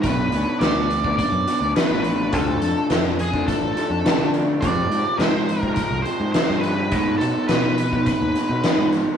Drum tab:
HH |x-x-x-x-x-x-x-x-|x-x-x-x-x-x-x-x-|x-x-x-x-x-x-x-x-|x-x-x-x-x-x-x-x-|
SD |----o-------o---|----o-------o---|----o-------o---|----o-------o---|
BD |o------oo-------|o------oo-------|o------oo-------|o------oo-------|